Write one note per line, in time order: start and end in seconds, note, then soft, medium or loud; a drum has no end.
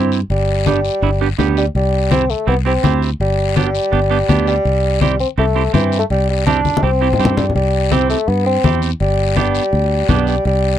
0.00 0.23 G2 medium
0.00 0.19 C4 medium
0.00 0.19 E4 medium
0.00 0.19 G4 medium
0.12 short guiro medium
0.30 0.88 G1 medium
0.30 0.64 G3 medium
0.30 high conga soft
0.30 long guiro medium
0.66 1.27 G3 medium
0.66 0.79 B3 medium
0.66 0.79 D4 medium
0.66 0.79 G4 medium
0.66 high conga medium
0.66 short guiro medium
0.85 short guiro medium
1.02 1.31 G1 medium
1.02 1.09 B3 medium
1.02 1.09 D4 medium
1.02 1.09 E4 medium
1.02 high conga soft
1.02 long guiro medium
1.21 1.27 B3 medium
1.21 1.27 D4 medium
1.21 1.27 G4 medium
1.38 1.68 D2 medium
1.38 1.64 B3 medium
1.38 1.64 D4 medium
1.38 1.64 G4 medium
1.38 high conga medium
1.38 short guiro medium
1.57 1.66 G3 medium
1.57 short guiro medium
1.75 2.33 C2 medium
1.75 2.09 G3 medium
1.75 high conga soft
1.75 long guiro medium
2.11 2.24 C4 medium
2.11 2.31 C4 medium
2.11 2.24 E4 medium
2.11 2.24 G4 medium
2.11 high conga medium
2.11 short guiro medium
2.30 2.48 A3 medium
2.30 short guiro medium
2.47 2.77 C2 medium
2.47 2.56 B3 medium
2.47 2.54 C4 medium
2.47 2.54 E4 medium
2.47 2.54 G4 medium
2.47 high conga soft
2.47 long guiro medium
2.65 2.72 C4 medium
2.65 3.00 C4 medium
2.65 2.72 E4 medium
2.65 2.72 G4 medium
2.83 3.13 D2 medium
2.83 3.09 C4 medium
2.83 3.09 E4 medium
2.83 3.09 G4 medium
2.83 high conga medium
2.83 short guiro medium
3.02 short guiro medium
3.20 3.78 G1 medium
3.20 3.54 G3 medium
3.20 high conga soft
3.20 long guiro medium
3.56 4.44 G3 medium
3.56 3.69 B3 medium
3.56 3.69 D4 medium
3.56 3.69 G4 medium
3.56 high conga medium
3.56 short guiro medium
3.75 short guiro medium
3.92 4.22 G1 loud
3.92 3.99 B3 medium
3.92 3.99 D4 medium
3.92 3.99 G4 medium
3.92 high conga soft
3.92 long guiro medium
4.10 4.17 B3 medium
4.10 4.17 D4 medium
4.10 4.17 G4 medium
4.29 4.58 D2 loud
4.29 4.54 B3 medium
4.29 4.54 D4 medium
4.29 4.55 G4 medium
4.29 high conga medium
4.29 short guiro medium
4.47 4.98 G3 loud
4.47 short guiro medium
4.65 5.23 C2 medium
4.65 high conga soft
4.65 long guiro medium
5.01 5.19 G3 medium
5.01 5.14 C4 medium
5.01 5.14 E4 soft
5.01 5.15 G4 medium
5.01 high conga medium
5.01 short guiro medium
5.20 5.28 C4 medium
5.20 short guiro medium
5.38 5.67 C2 medium
5.38 5.72 A3 medium
5.38 5.44 C4 medium
5.38 5.44 E4 medium
5.38 5.45 G4 medium
5.38 high conga soft
5.38 long guiro medium
5.55 5.62 C4 medium
5.55 5.62 E4 medium
5.55 5.62 G4 medium
5.73 6.03 G2 loud
5.73 5.97 E3 medium
5.73 5.99 C4 medium
5.73 5.99 E4 medium
5.73 6.00 G4 medium
5.73 high conga medium
5.73 short guiro medium
5.92 short guiro medium
5.99 6.04 A3 medium
6.10 6.68 C2 medium
6.10 6.28 G3 medium
6.10 high conga soft
6.10 long guiro medium
6.30 6.46 G3 medium
6.47 6.59 C4 medium
6.47 6.84 D4 loud
6.47 6.60 E4 medium
6.47 6.60 G4 medium
6.47 high conga medium
6.47 short guiro medium
6.65 high conga medium
6.65 short guiro medium
6.77 high conga medium
6.83 7.12 C2 loud
6.83 7.36 C4 medium
6.83 6.89 C4 medium
6.83 6.89 E4 soft
6.83 6.90 G4 medium
6.83 long guiro medium
7.01 7.07 C4 medium
7.01 7.08 E4 medium
7.01 7.08 G4 medium
7.13 low conga medium
7.19 7.48 G2 medium
7.19 7.45 C4 medium
7.19 7.45 E4 soft
7.19 7.45 G4 medium
7.19 short guiro medium
7.25 low conga loud
7.37 7.54 G3 medium
7.37 low conga medium
7.37 short guiro medium
7.49 low conga medium
7.55 8.13 C2 medium
7.55 7.94 G3 medium
7.55 high conga soft
7.55 long guiro medium
7.91 8.17 C4 medium
7.91 8.09 C4 medium
7.91 8.17 E4 medium
7.91 8.17 G4 medium
7.91 high conga medium
7.91 short guiro medium
8.10 8.29 A3 medium
8.10 short guiro medium
8.28 8.57 G2 medium
8.28 8.46 B3 medium
8.28 high conga soft
8.28 long guiro medium
8.46 8.80 C4 medium
8.64 8.93 E2 medium
8.64 8.89 C4 medium
8.64 8.90 E4 medium
8.64 8.90 G4 medium
8.64 high conga medium
8.64 short guiro medium
8.82 short guiro medium
9.00 9.58 G1 loud
9.00 9.34 G3 medium
9.00 high conga soft
9.00 long guiro medium
9.36 10.24 G3 medium
9.36 9.62 B3 medium
9.36 9.62 D4 medium
9.36 9.62 G4 medium
9.36 high conga medium
9.36 short guiro medium
9.55 short guiro medium
9.73 10.02 D2 medium
9.73 high conga soft
9.73 long guiro medium
10.09 10.38 B1 medium
10.09 10.34 B3 medium
10.09 10.35 D4 medium
10.09 10.35 G4 medium
10.09 high conga medium
10.09 low conga medium
10.09 short guiro medium
10.27 10.45 G3 medium
10.27 short guiro medium
10.45 10.79 C2 medium
10.45 10.79 G3 medium
10.45 high conga soft
10.45 long guiro medium